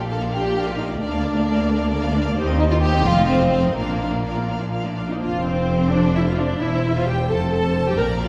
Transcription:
Already playing: double bass section A#1, cello section A#2
0.08 viola section D4 A#4, violin section A4 F5
0.20 viola section A#3 F4, violin section D5
0.31 viola section D4 A#4, violin section G4 F5
0.42 viola section A#3 F4, violin section D5
0.54 viola section D4 A#4, violin section F5
0.66 viola section A#3 F4, violin section F4 D5
0.77 viola section D4 A#4, violin section D#4 F5
0.89 viola section A#3 F4, violin section D5
1.00 double bass section D2, cello section D2, violin section D4 D5, viola section D4 A#4
1.11 viola section A#3 D5, violin section F5
1.23 viola section D4 A#4, violin section D5
1.34 viola section A#3 D5, violin section F5
1.45 viola section D4 A#4, violin section D5
1.57 viola section A#3 D5, violin section F5
1.68 viola section D4 A#4, violin section D5
1.79 viola section A#3 D5, violin section F5
1.90 viola section D4 A#4, violin section D5
2.01 viola section A#3 D5, violin section F5
2.14 viola section D4 A#4, violin section D5
2.24 viola section A#3 D5, violin section F5
2.36 double bass section D#2, cello section D#2, viola section D#4 G4, violin section C5
2.47 viola section C4 D#4, violin section D#5
2.58 violin section D#4 C5, viola section D#4 G4
2.69 viola section C4 D#4, violin section F4 D#5
2.81 viola section D#4 G4, violin section G4 C5
2.92 viola section C4 D#4, violin section D#5
3.04 double bass section F1, cello section F2, viola section C4 F4, violin section F4 F5
3.16 viola section A3 D#4, violin section D#5
3.27 violin section C4 F5, viola section C4 F4
3.40 viola section A3 D#4, violin section D#5
3.52 viola section C4 F4, violin section F5
3.64 viola section A3 D#4, violin section D#5
3.76 double bass section A#1, cello section A#2, violin section A#3 F5, viola section D4 F4
3.89 viola section A#3 D4, violin section D5
4.00 viola section D4 F4, violin section F5
4.13 viola section A#3 D4, violin section D5
4.24 viola section D4 F4, violin section F5
4.37 viola section A#3 D4, violin section D5
4.48 viola section D4 F4, violin section F5
4.60 viola section A#3 D4, violin section D5
4.72 viola section D4 F4, violin section F5
4.85 viola section A#3 D4, violin section D5
4.97 viola section D4 F4, violin section F5
5.09 viola section A#3 D4 D#4, violin section D5 D#5
5.21 double bass section F1, cello section F2, viola section F4, violin section C5 F5
5.45 viola section C4, violin section C5
5.92 viola section D4, violin section D5
6.15 viola section E4, violin section E5
6.27 viola section F4, violin section F5
6.38 viola section D4, violin section D5
6.60 double bass section E1, cello section E2, viola section E4, violin section C5 E5
6.96 viola section F4, violin section F5
7.06 viola section G4, violin section G5
7.28 double bass section F1, cello section F2, viola section A4, violin section C5 A5
7.51 viola section A4, violin section A5
7.86 viola section G4, violin section G5
7.96 double bass section A#1, cello section A#2, viola section A#4, violin section D5 A#5
8.20 viola section F4, violin section F5

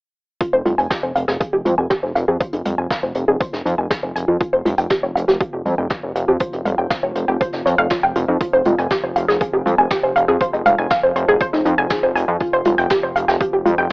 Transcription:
0.41 synth drone F2 F3, synth pluck F4, kick, closed hi-hat
0.53 analog synth bass F1, synth pluck C5
0.65 analog synth bass F1, synth pluck F4, closed hi-hat, low conga
0.78 analog synth bass F1, synth pluck G#5, closed hi-hat
0.90 synth pluck G4, kick, snare, closed hi-hat
1.03 analog synth bass F1, synth pluck C5
1.15 analog synth bass F1, synth pluck F5, closed hi-hat
1.28 analog synth bass F1, synth pluck G#4, snare
1.40 synth pluck G#4, kick, closed hi-hat
1.53 analog synth bass F1, synth pluck G4
1.65 analog synth bass F2, synth pluck F4, closed hi-hat, low conga
1.78 analog synth bass F1, synth pluck G#5
1.90 synth pluck G4, kick, snare, closed hi-hat
2.03 analog synth bass F1, synth pluck C5
2.15 analog synth bass F1, synth pluck F5, closed hi-hat
2.28 analog synth bass F2, synth pluck G#4
2.40 synth pluck C5, kick, closed hi-hat
2.53 analog synth bass F1, synth pluck D#4, closed hi-hat
2.65 analog synth bass F1, synth pluck F5, closed hi-hat, low conga
2.78 analog synth bass F1, synth pluck G#5
2.91 synth pluck F5, kick, snare, closed hi-hat
3.03 analog synth bass F1, synth pluck C5
3.15 analog synth bass F1, synth pluck C5, closed hi-hat
3.28 analog synth bass F1, synth pluck G#4
3.41 synth pluck C5, kick, closed hi-hat
3.53 analog synth bass F1, synth pluck D#4, snare
3.66 analog synth bass F2, synth pluck D#4, closed hi-hat
3.78 analog synth bass F1, synth pluck G#5
3.91 synth pluck G#4, kick, snare, closed hi-hat
4.03 analog synth bass F1, synth pluck C5
4.16 analog synth bass F1, synth pluck G#5, closed hi-hat
4.28 analog synth bass F2, synth pluck F4
4.41 synth pluck F4, kick, closed hi-hat
4.53 analog synth bass F1, synth pluck C5
4.66 analog synth bass F1, synth pluck F4, closed hi-hat, low conga
4.78 analog synth bass F1, synth pluck G5, closed hi-hat
4.90 synth pluck G4, kick, snare, closed hi-hat
5.03 analog synth bass F1, synth pluck C#5
5.16 analog synth bass F1, synth pluck F5, closed hi-hat
5.28 analog synth bass F1, synth pluck G4, snare
5.41 synth pluck G4, kick, closed hi-hat
5.53 analog synth bass F1, synth pluck G4
5.66 analog synth bass F2, synth pluck F4, closed hi-hat, low conga
5.78 analog synth bass F1, synth pluck G5
5.90 synth pluck G4, kick, snare, closed hi-hat
6.03 analog synth bass F1, synth pluck C#5
6.16 analog synth bass F1, synth pluck F5, closed hi-hat
6.28 analog synth bass F2, synth pluck G4
6.40 synth pluck C5, kick, closed hi-hat
6.53 analog synth bass F1, synth pluck D#4, closed hi-hat
6.66 analog synth bass F1, synth pluck F5, closed hi-hat, low conga
6.78 analog synth bass F1, synth pluck G5
6.91 synth pluck F5, kick, snare, closed hi-hat
7.03 analog synth bass F1, synth pluck C#5
7.15 analog synth bass F1, synth pluck C5, closed hi-hat
7.28 analog synth bass F1, synth pluck G4
7.41 synth pluck C5, kick, closed hi-hat
7.52 analog synth bass F1, synth pluck D#4, snare
7.66 analog synth bass F2, synth pluck C#5, closed hi-hat
7.78 analog synth bass F1, synth pluck F5
7.90 synth pluck F4, kick, snare, closed hi-hat
8.03 analog synth bass F1, synth pluck G5
8.15 analog synth bass F1, synth pluck F4, closed hi-hat
8.28 analog synth bass F2, synth pluck D#4
8.40 synth pluck F4, kick, closed hi-hat
8.53 analog synth bass F1, synth pluck C5
8.65 analog synth bass F1, synth pluck F4, closed hi-hat, low conga
8.78 analog synth bass F1, synth pluck G#5, closed hi-hat
8.90 synth pluck G4, kick, snare, closed hi-hat
9.03 analog synth bass F1, synth pluck C5
9.16 analog synth bass F1, synth pluck F5, closed hi-hat
9.28 analog synth bass F1, synth pluck G#4, snare
9.41 synth pluck G#4, kick, closed hi-hat
9.53 analog synth bass F1, synth pluck G4
9.66 analog synth bass F2, synth pluck F4, closed hi-hat, low conga
9.78 analog synth bass F1, synth pluck G#5
9.90 synth pluck G4, kick, snare, closed hi-hat
10.03 analog synth bass F1, synth pluck C5
10.16 analog synth bass F1, synth pluck F5, closed hi-hat
10.28 analog synth bass F2, synth pluck G#4
10.41 synth pluck C5, kick, closed hi-hat
10.53 analog synth bass F1, synth pluck D#4, closed hi-hat
10.65 analog synth bass F1, synth pluck F5, closed hi-hat, low conga
10.78 analog synth bass F1, synth pluck G#5
10.90 synth pluck F5, kick, snare, closed hi-hat
11.03 analog synth bass F1, synth pluck C5
11.16 analog synth bass F1, synth pluck C5, closed hi-hat
11.28 analog synth bass F1, synth pluck G#4
11.41 synth pluck C5, kick, closed hi-hat
11.53 analog synth bass F1, synth pluck D#4, snare
11.65 analog synth bass F2, synth pluck D#4, closed hi-hat
11.78 analog synth bass F1, synth pluck G#5
11.90 synth pluck G#4, kick, snare, closed hi-hat
12.03 analog synth bass F1, synth pluck C5
12.16 analog synth bass F1, synth pluck G#5, closed hi-hat
12.28 analog synth bass F2, synth pluck F4
12.40 synth pluck F4, kick, closed hi-hat
12.53 analog synth bass F1, synth pluck C5
12.65 analog synth bass F1, synth pluck F4, closed hi-hat, low conga
12.78 analog synth bass F1, synth pluck G5, closed hi-hat
12.90 synth pluck G4, kick, snare, closed hi-hat
13.03 analog synth bass F1, synth pluck C5
13.16 analog synth bass F1, synth pluck F5, closed hi-hat
13.28 analog synth bass F1, synth pluck G4, snare
13.41 synth pluck G4, kick, closed hi-hat
13.53 analog synth bass F1, synth pluck G4
13.66 analog synth bass F2, synth pluck F4, closed hi-hat, low conga
13.78 analog synth bass F1, synth pluck G5

